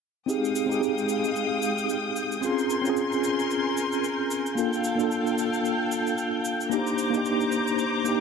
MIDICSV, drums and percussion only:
0, 0, Header, 1, 2, 480
1, 0, Start_track
1, 0, Key_signature, -4, "minor"
1, 0, Tempo, 535714
1, 256, Time_signature, 4, 2, 24, 8
1, 7351, End_track
2, 0, Start_track
2, 0, Title_t, "Drums"
2, 260, Note_on_c, 9, 69, 39
2, 350, Note_off_c, 9, 69, 0
2, 400, Note_on_c, 9, 69, 26
2, 490, Note_off_c, 9, 69, 0
2, 499, Note_on_c, 9, 69, 63
2, 589, Note_off_c, 9, 69, 0
2, 642, Note_on_c, 9, 69, 28
2, 731, Note_off_c, 9, 69, 0
2, 743, Note_on_c, 9, 69, 38
2, 832, Note_off_c, 9, 69, 0
2, 880, Note_on_c, 9, 69, 25
2, 969, Note_off_c, 9, 69, 0
2, 975, Note_on_c, 9, 69, 67
2, 1065, Note_off_c, 9, 69, 0
2, 1114, Note_on_c, 9, 69, 28
2, 1203, Note_off_c, 9, 69, 0
2, 1217, Note_on_c, 9, 69, 38
2, 1307, Note_off_c, 9, 69, 0
2, 1455, Note_on_c, 9, 69, 70
2, 1544, Note_off_c, 9, 69, 0
2, 1595, Note_on_c, 9, 69, 29
2, 1684, Note_off_c, 9, 69, 0
2, 1697, Note_on_c, 9, 69, 42
2, 1787, Note_off_c, 9, 69, 0
2, 1937, Note_on_c, 9, 69, 61
2, 2026, Note_off_c, 9, 69, 0
2, 2076, Note_on_c, 9, 69, 31
2, 2166, Note_off_c, 9, 69, 0
2, 2176, Note_on_c, 9, 69, 38
2, 2266, Note_off_c, 9, 69, 0
2, 2317, Note_on_c, 9, 69, 28
2, 2406, Note_off_c, 9, 69, 0
2, 2419, Note_on_c, 9, 69, 67
2, 2508, Note_off_c, 9, 69, 0
2, 2557, Note_on_c, 9, 69, 30
2, 2647, Note_off_c, 9, 69, 0
2, 2658, Note_on_c, 9, 69, 38
2, 2748, Note_off_c, 9, 69, 0
2, 2799, Note_on_c, 9, 69, 28
2, 2889, Note_off_c, 9, 69, 0
2, 2901, Note_on_c, 9, 69, 70
2, 2991, Note_off_c, 9, 69, 0
2, 3041, Note_on_c, 9, 69, 32
2, 3130, Note_off_c, 9, 69, 0
2, 3141, Note_on_c, 9, 69, 38
2, 3231, Note_off_c, 9, 69, 0
2, 3381, Note_on_c, 9, 69, 68
2, 3470, Note_off_c, 9, 69, 0
2, 3515, Note_on_c, 9, 69, 29
2, 3604, Note_off_c, 9, 69, 0
2, 3619, Note_on_c, 9, 69, 42
2, 3709, Note_off_c, 9, 69, 0
2, 3859, Note_on_c, 9, 69, 68
2, 3948, Note_off_c, 9, 69, 0
2, 3999, Note_on_c, 9, 69, 30
2, 4089, Note_off_c, 9, 69, 0
2, 4102, Note_on_c, 9, 69, 40
2, 4191, Note_off_c, 9, 69, 0
2, 4239, Note_on_c, 9, 69, 28
2, 4329, Note_off_c, 9, 69, 0
2, 4337, Note_on_c, 9, 69, 64
2, 4426, Note_off_c, 9, 69, 0
2, 4476, Note_on_c, 9, 69, 31
2, 4565, Note_off_c, 9, 69, 0
2, 4582, Note_on_c, 9, 69, 40
2, 4671, Note_off_c, 9, 69, 0
2, 4720, Note_on_c, 9, 69, 29
2, 4809, Note_off_c, 9, 69, 0
2, 4822, Note_on_c, 9, 69, 72
2, 4912, Note_off_c, 9, 69, 0
2, 4959, Note_on_c, 9, 69, 32
2, 5049, Note_off_c, 9, 69, 0
2, 5064, Note_on_c, 9, 69, 38
2, 5154, Note_off_c, 9, 69, 0
2, 5302, Note_on_c, 9, 69, 74
2, 5391, Note_off_c, 9, 69, 0
2, 5438, Note_on_c, 9, 69, 31
2, 5527, Note_off_c, 9, 69, 0
2, 5538, Note_on_c, 9, 69, 45
2, 5627, Note_off_c, 9, 69, 0
2, 5777, Note_on_c, 9, 69, 69
2, 5867, Note_off_c, 9, 69, 0
2, 5920, Note_on_c, 9, 69, 33
2, 6009, Note_off_c, 9, 69, 0
2, 6019, Note_on_c, 9, 69, 39
2, 6108, Note_off_c, 9, 69, 0
2, 6154, Note_on_c, 9, 69, 29
2, 6244, Note_off_c, 9, 69, 0
2, 6257, Note_on_c, 9, 69, 67
2, 6347, Note_off_c, 9, 69, 0
2, 6398, Note_on_c, 9, 69, 32
2, 6487, Note_off_c, 9, 69, 0
2, 6499, Note_on_c, 9, 69, 38
2, 6589, Note_off_c, 9, 69, 0
2, 6636, Note_on_c, 9, 69, 26
2, 6725, Note_off_c, 9, 69, 0
2, 6737, Note_on_c, 9, 69, 69
2, 6827, Note_off_c, 9, 69, 0
2, 6877, Note_on_c, 9, 69, 30
2, 6966, Note_off_c, 9, 69, 0
2, 6975, Note_on_c, 9, 69, 39
2, 7065, Note_off_c, 9, 69, 0
2, 7217, Note_on_c, 9, 69, 74
2, 7306, Note_off_c, 9, 69, 0
2, 7351, End_track
0, 0, End_of_file